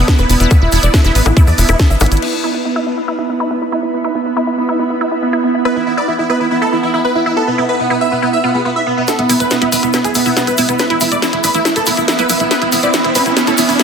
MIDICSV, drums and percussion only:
0, 0, Header, 1, 2, 480
1, 0, Start_track
1, 0, Tempo, 428571
1, 570, Time_signature, 4, 2, 24, 8
1, 15491, End_track
2, 0, Start_track
2, 0, Title_t, "Drums"
2, 90, Note_on_c, 9, 36, 114
2, 90, Note_on_c, 9, 38, 121
2, 91, Note_on_c, 9, 82, 51
2, 202, Note_off_c, 9, 36, 0
2, 202, Note_off_c, 9, 38, 0
2, 203, Note_off_c, 9, 82, 0
2, 206, Note_on_c, 9, 82, 35
2, 210, Note_on_c, 9, 60, 41
2, 318, Note_off_c, 9, 82, 0
2, 322, Note_off_c, 9, 60, 0
2, 330, Note_on_c, 9, 46, 102
2, 333, Note_on_c, 9, 82, 93
2, 442, Note_off_c, 9, 46, 0
2, 445, Note_off_c, 9, 82, 0
2, 450, Note_on_c, 9, 42, 72
2, 452, Note_on_c, 9, 82, 39
2, 562, Note_off_c, 9, 42, 0
2, 564, Note_off_c, 9, 82, 0
2, 568, Note_on_c, 9, 82, 54
2, 570, Note_on_c, 9, 36, 119
2, 570, Note_on_c, 9, 42, 71
2, 570, Note_on_c, 9, 60, 82
2, 680, Note_off_c, 9, 82, 0
2, 682, Note_off_c, 9, 36, 0
2, 682, Note_off_c, 9, 42, 0
2, 682, Note_off_c, 9, 60, 0
2, 805, Note_on_c, 9, 82, 82
2, 810, Note_on_c, 9, 46, 104
2, 917, Note_off_c, 9, 82, 0
2, 922, Note_off_c, 9, 46, 0
2, 926, Note_on_c, 9, 82, 43
2, 930, Note_on_c, 9, 42, 69
2, 1038, Note_off_c, 9, 82, 0
2, 1042, Note_off_c, 9, 42, 0
2, 1050, Note_on_c, 9, 36, 122
2, 1050, Note_on_c, 9, 38, 127
2, 1050, Note_on_c, 9, 42, 70
2, 1050, Note_on_c, 9, 60, 40
2, 1053, Note_on_c, 9, 82, 51
2, 1162, Note_off_c, 9, 36, 0
2, 1162, Note_off_c, 9, 38, 0
2, 1162, Note_off_c, 9, 42, 0
2, 1162, Note_off_c, 9, 60, 0
2, 1165, Note_off_c, 9, 82, 0
2, 1167, Note_on_c, 9, 82, 39
2, 1170, Note_on_c, 9, 38, 39
2, 1279, Note_off_c, 9, 82, 0
2, 1282, Note_off_c, 9, 38, 0
2, 1290, Note_on_c, 9, 46, 105
2, 1293, Note_on_c, 9, 82, 83
2, 1402, Note_off_c, 9, 46, 0
2, 1405, Note_off_c, 9, 82, 0
2, 1408, Note_on_c, 9, 82, 38
2, 1411, Note_on_c, 9, 42, 71
2, 1411, Note_on_c, 9, 60, 86
2, 1520, Note_off_c, 9, 82, 0
2, 1523, Note_off_c, 9, 42, 0
2, 1523, Note_off_c, 9, 60, 0
2, 1530, Note_on_c, 9, 36, 116
2, 1531, Note_on_c, 9, 42, 69
2, 1537, Note_on_c, 9, 82, 52
2, 1642, Note_off_c, 9, 36, 0
2, 1643, Note_off_c, 9, 42, 0
2, 1648, Note_off_c, 9, 82, 0
2, 1648, Note_on_c, 9, 82, 36
2, 1651, Note_on_c, 9, 46, 59
2, 1760, Note_off_c, 9, 82, 0
2, 1763, Note_off_c, 9, 46, 0
2, 1771, Note_on_c, 9, 46, 109
2, 1772, Note_on_c, 9, 82, 84
2, 1883, Note_off_c, 9, 46, 0
2, 1884, Note_off_c, 9, 82, 0
2, 1888, Note_on_c, 9, 82, 41
2, 1891, Note_on_c, 9, 42, 69
2, 1891, Note_on_c, 9, 60, 39
2, 2000, Note_off_c, 9, 82, 0
2, 2003, Note_off_c, 9, 42, 0
2, 2003, Note_off_c, 9, 60, 0
2, 2009, Note_on_c, 9, 82, 49
2, 2010, Note_on_c, 9, 36, 121
2, 2010, Note_on_c, 9, 38, 122
2, 2010, Note_on_c, 9, 42, 70
2, 2121, Note_off_c, 9, 82, 0
2, 2122, Note_off_c, 9, 36, 0
2, 2122, Note_off_c, 9, 38, 0
2, 2122, Note_off_c, 9, 42, 0
2, 2133, Note_on_c, 9, 82, 35
2, 2240, Note_off_c, 9, 82, 0
2, 2240, Note_on_c, 9, 82, 83
2, 2250, Note_on_c, 9, 42, 55
2, 2250, Note_on_c, 9, 46, 107
2, 2250, Note_on_c, 9, 60, 81
2, 2310, Note_off_c, 9, 42, 0
2, 2310, Note_on_c, 9, 42, 67
2, 2352, Note_off_c, 9, 82, 0
2, 2362, Note_off_c, 9, 46, 0
2, 2362, Note_off_c, 9, 60, 0
2, 2369, Note_on_c, 9, 82, 41
2, 2370, Note_off_c, 9, 42, 0
2, 2370, Note_on_c, 9, 42, 78
2, 2430, Note_off_c, 9, 42, 0
2, 2430, Note_on_c, 9, 42, 88
2, 2481, Note_off_c, 9, 82, 0
2, 2490, Note_on_c, 9, 49, 86
2, 2542, Note_off_c, 9, 42, 0
2, 2602, Note_off_c, 9, 49, 0
2, 10165, Note_on_c, 9, 82, 50
2, 10170, Note_on_c, 9, 38, 49
2, 10170, Note_on_c, 9, 42, 82
2, 10277, Note_off_c, 9, 82, 0
2, 10282, Note_off_c, 9, 38, 0
2, 10282, Note_off_c, 9, 42, 0
2, 10290, Note_on_c, 9, 42, 53
2, 10402, Note_off_c, 9, 42, 0
2, 10410, Note_on_c, 9, 46, 101
2, 10413, Note_on_c, 9, 82, 91
2, 10522, Note_off_c, 9, 46, 0
2, 10525, Note_off_c, 9, 82, 0
2, 10530, Note_on_c, 9, 42, 53
2, 10532, Note_on_c, 9, 82, 40
2, 10642, Note_off_c, 9, 42, 0
2, 10644, Note_off_c, 9, 82, 0
2, 10646, Note_on_c, 9, 82, 50
2, 10650, Note_on_c, 9, 38, 50
2, 10650, Note_on_c, 9, 42, 82
2, 10758, Note_off_c, 9, 82, 0
2, 10762, Note_off_c, 9, 38, 0
2, 10762, Note_off_c, 9, 42, 0
2, 10770, Note_on_c, 9, 42, 56
2, 10882, Note_off_c, 9, 42, 0
2, 10890, Note_on_c, 9, 46, 105
2, 10891, Note_on_c, 9, 82, 84
2, 11002, Note_off_c, 9, 46, 0
2, 11003, Note_off_c, 9, 82, 0
2, 11010, Note_on_c, 9, 42, 58
2, 11016, Note_on_c, 9, 82, 35
2, 11122, Note_off_c, 9, 42, 0
2, 11123, Note_off_c, 9, 82, 0
2, 11123, Note_on_c, 9, 82, 54
2, 11131, Note_on_c, 9, 38, 51
2, 11131, Note_on_c, 9, 42, 80
2, 11235, Note_off_c, 9, 82, 0
2, 11243, Note_off_c, 9, 38, 0
2, 11243, Note_off_c, 9, 42, 0
2, 11250, Note_on_c, 9, 42, 53
2, 11252, Note_on_c, 9, 82, 39
2, 11362, Note_off_c, 9, 42, 0
2, 11363, Note_off_c, 9, 82, 0
2, 11363, Note_on_c, 9, 82, 88
2, 11370, Note_on_c, 9, 46, 106
2, 11475, Note_off_c, 9, 82, 0
2, 11482, Note_off_c, 9, 46, 0
2, 11489, Note_on_c, 9, 82, 37
2, 11490, Note_on_c, 9, 46, 60
2, 11601, Note_off_c, 9, 82, 0
2, 11602, Note_off_c, 9, 46, 0
2, 11609, Note_on_c, 9, 82, 49
2, 11610, Note_on_c, 9, 38, 51
2, 11610, Note_on_c, 9, 42, 81
2, 11721, Note_off_c, 9, 82, 0
2, 11722, Note_off_c, 9, 38, 0
2, 11722, Note_off_c, 9, 42, 0
2, 11730, Note_on_c, 9, 42, 52
2, 11731, Note_on_c, 9, 82, 39
2, 11842, Note_off_c, 9, 42, 0
2, 11843, Note_off_c, 9, 82, 0
2, 11843, Note_on_c, 9, 82, 92
2, 11850, Note_on_c, 9, 46, 103
2, 11955, Note_off_c, 9, 82, 0
2, 11962, Note_off_c, 9, 46, 0
2, 11970, Note_on_c, 9, 42, 55
2, 11972, Note_on_c, 9, 82, 38
2, 12082, Note_off_c, 9, 42, 0
2, 12082, Note_off_c, 9, 82, 0
2, 12082, Note_on_c, 9, 82, 50
2, 12090, Note_on_c, 9, 38, 52
2, 12090, Note_on_c, 9, 42, 79
2, 12194, Note_off_c, 9, 82, 0
2, 12202, Note_off_c, 9, 38, 0
2, 12202, Note_off_c, 9, 42, 0
2, 12210, Note_on_c, 9, 42, 53
2, 12322, Note_off_c, 9, 42, 0
2, 12325, Note_on_c, 9, 82, 92
2, 12330, Note_on_c, 9, 46, 105
2, 12437, Note_off_c, 9, 82, 0
2, 12442, Note_off_c, 9, 46, 0
2, 12450, Note_on_c, 9, 42, 50
2, 12455, Note_on_c, 9, 82, 42
2, 12562, Note_off_c, 9, 42, 0
2, 12567, Note_off_c, 9, 82, 0
2, 12570, Note_on_c, 9, 38, 54
2, 12570, Note_on_c, 9, 42, 84
2, 12574, Note_on_c, 9, 82, 49
2, 12682, Note_off_c, 9, 38, 0
2, 12682, Note_off_c, 9, 42, 0
2, 12686, Note_off_c, 9, 82, 0
2, 12690, Note_on_c, 9, 42, 55
2, 12802, Note_off_c, 9, 42, 0
2, 12810, Note_on_c, 9, 46, 107
2, 12810, Note_on_c, 9, 82, 98
2, 12922, Note_off_c, 9, 46, 0
2, 12922, Note_off_c, 9, 82, 0
2, 12924, Note_on_c, 9, 82, 39
2, 12931, Note_on_c, 9, 42, 55
2, 13036, Note_off_c, 9, 82, 0
2, 13043, Note_off_c, 9, 42, 0
2, 13050, Note_on_c, 9, 38, 53
2, 13050, Note_on_c, 9, 42, 75
2, 13053, Note_on_c, 9, 82, 54
2, 13162, Note_off_c, 9, 38, 0
2, 13162, Note_off_c, 9, 42, 0
2, 13165, Note_off_c, 9, 82, 0
2, 13170, Note_on_c, 9, 42, 54
2, 13174, Note_on_c, 9, 82, 39
2, 13282, Note_off_c, 9, 42, 0
2, 13284, Note_off_c, 9, 82, 0
2, 13284, Note_on_c, 9, 82, 99
2, 13290, Note_on_c, 9, 46, 112
2, 13396, Note_off_c, 9, 82, 0
2, 13402, Note_off_c, 9, 46, 0
2, 13410, Note_on_c, 9, 42, 54
2, 13417, Note_on_c, 9, 82, 38
2, 13522, Note_off_c, 9, 42, 0
2, 13529, Note_off_c, 9, 82, 0
2, 13530, Note_on_c, 9, 38, 58
2, 13530, Note_on_c, 9, 42, 76
2, 13535, Note_on_c, 9, 82, 52
2, 13642, Note_off_c, 9, 38, 0
2, 13642, Note_off_c, 9, 42, 0
2, 13647, Note_off_c, 9, 82, 0
2, 13647, Note_on_c, 9, 82, 42
2, 13651, Note_on_c, 9, 42, 50
2, 13759, Note_off_c, 9, 82, 0
2, 13763, Note_off_c, 9, 42, 0
2, 13768, Note_on_c, 9, 82, 98
2, 13770, Note_on_c, 9, 46, 111
2, 13880, Note_off_c, 9, 82, 0
2, 13882, Note_off_c, 9, 46, 0
2, 13884, Note_on_c, 9, 82, 38
2, 13890, Note_on_c, 9, 42, 55
2, 13996, Note_off_c, 9, 82, 0
2, 14002, Note_off_c, 9, 42, 0
2, 14010, Note_on_c, 9, 38, 58
2, 14010, Note_on_c, 9, 42, 74
2, 14014, Note_on_c, 9, 82, 53
2, 14122, Note_off_c, 9, 38, 0
2, 14122, Note_off_c, 9, 42, 0
2, 14126, Note_off_c, 9, 82, 0
2, 14130, Note_on_c, 9, 42, 50
2, 14242, Note_off_c, 9, 42, 0
2, 14247, Note_on_c, 9, 82, 98
2, 14250, Note_on_c, 9, 46, 104
2, 14359, Note_off_c, 9, 82, 0
2, 14362, Note_off_c, 9, 46, 0
2, 14366, Note_on_c, 9, 82, 39
2, 14370, Note_on_c, 9, 42, 48
2, 14478, Note_off_c, 9, 82, 0
2, 14482, Note_off_c, 9, 42, 0
2, 14487, Note_on_c, 9, 82, 50
2, 14490, Note_on_c, 9, 38, 62
2, 14490, Note_on_c, 9, 42, 82
2, 14599, Note_off_c, 9, 82, 0
2, 14602, Note_off_c, 9, 38, 0
2, 14602, Note_off_c, 9, 42, 0
2, 14610, Note_on_c, 9, 42, 53
2, 14722, Note_off_c, 9, 42, 0
2, 14730, Note_on_c, 9, 46, 113
2, 14730, Note_on_c, 9, 82, 91
2, 14842, Note_off_c, 9, 46, 0
2, 14842, Note_off_c, 9, 82, 0
2, 14847, Note_on_c, 9, 82, 38
2, 14850, Note_on_c, 9, 42, 53
2, 14959, Note_off_c, 9, 82, 0
2, 14962, Note_off_c, 9, 42, 0
2, 14970, Note_on_c, 9, 38, 62
2, 14970, Note_on_c, 9, 42, 76
2, 14974, Note_on_c, 9, 82, 54
2, 15082, Note_off_c, 9, 38, 0
2, 15082, Note_off_c, 9, 42, 0
2, 15085, Note_off_c, 9, 82, 0
2, 15085, Note_on_c, 9, 82, 39
2, 15090, Note_on_c, 9, 42, 51
2, 15197, Note_off_c, 9, 82, 0
2, 15202, Note_off_c, 9, 42, 0
2, 15205, Note_on_c, 9, 82, 96
2, 15210, Note_on_c, 9, 46, 114
2, 15317, Note_off_c, 9, 82, 0
2, 15322, Note_off_c, 9, 46, 0
2, 15330, Note_on_c, 9, 46, 66
2, 15335, Note_on_c, 9, 82, 42
2, 15442, Note_off_c, 9, 46, 0
2, 15447, Note_off_c, 9, 82, 0
2, 15450, Note_on_c, 9, 38, 64
2, 15450, Note_on_c, 9, 42, 77
2, 15451, Note_on_c, 9, 82, 49
2, 15491, Note_off_c, 9, 38, 0
2, 15491, Note_off_c, 9, 42, 0
2, 15491, Note_off_c, 9, 82, 0
2, 15491, End_track
0, 0, End_of_file